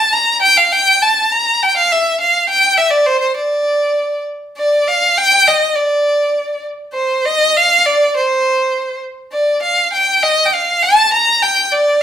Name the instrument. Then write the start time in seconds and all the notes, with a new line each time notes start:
violin
Already playing: A5
0.13 A#5
0.42 G5
0.57 F5
0.72 G5
1.02 A5
1.31 A#5
1.63 G5
1.77 F5
1.92 E5
2.20 F5
2.50 G5
2.78 E5
2.90 D5
3.06 C5
3.21 C5
3.37 D5
4.57 D5
4.87 F5
5.18 G5
5.48 D#5
5.76 D5
6.93 C5
7.25 D#5
7.57 F5
7.86 D5
8.16 C5
9.33 D5
9.62 F5
9.93 G5
10.23 D#5
10.46 G5
10.53 F5
10.83 A5
11.13 A#5
11.42 G5
11.72 D5